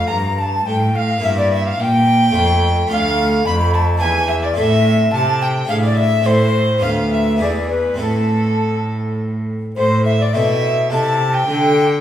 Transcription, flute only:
0.08 A#5
0.38 A5
0.66 G5
0.95 F5
1.23 E5
1.38 D5
1.53 E5
1.65 F5
1.80 G5
2.91 F5
3.46 B5
3.75 A5
4.01 G#5
4.29 E5
4.42 D5
4.56 E5
5.12 A5
5.41 G5
5.69 F5
5.84 D5
5.97 E5
6.26 C5
6.84 F5
7.10 E5
7.41 D5
7.70 B4
7.99 A4
9.76 C5
10.05 E5
10.20 D5
10.33 E5
10.91 A5
11.33 G5

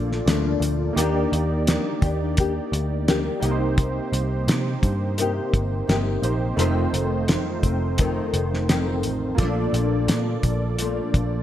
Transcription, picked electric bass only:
Already playing: A#1
0.26 D2
0.60 D2
0.96 D#2
1.32 D#2
2.02 D#2
2.72 D2
3.43 C2
4.13 C2
4.48 C3
4.83 G2
5.54 G1
5.89 G1
6.22 A#1
6.57 F1
6.93 F1
7.63 F1
8.33 F1
9.04 A1
9.38 A#1
9.73 A#1
10.08 A#2
10.43 A#1
11.14 A#1

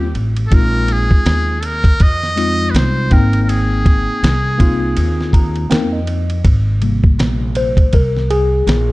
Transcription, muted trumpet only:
Already playing: G4
0.47 A4
0.54 A#4
0.93 G#4
1.61 A4
1.66 A#4
2.02 D#5
2.71 B4
2.76 C5
3.13 A#4
3.43 A#4
3.50 G#4

